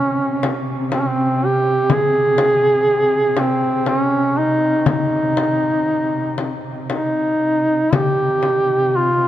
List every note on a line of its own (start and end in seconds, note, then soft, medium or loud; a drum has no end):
0.00 7.91 C3 medium
0.00 0.63 C#4 loud
0.43 frame drum medium
0.92 1.02 C4 medium
0.92 frame drum medium
1.01 1.11 C#4 medium
1.10 1.47 C4 medium
1.45 1.94 G4 loud
1.90 3.41 G#4 loud
1.90 frame drum medium
2.38 frame drum medium
3.37 3.90 C4 medium
3.37 frame drum medium
3.86 4.39 C#4 medium
3.86 frame drum medium
4.38 4.87 D#4 medium
4.86 6.58 D#4 medium
4.86 frame drum medium
5.37 frame drum medium
6.38 frame drum medium
6.90 7.96 D#4 medium
6.90 frame drum soft
7.92 9.28 C3 medium
7.92 8.98 G4 medium
7.92 frame drum medium
8.43 frame drum soft
8.96 9.28 F4 medium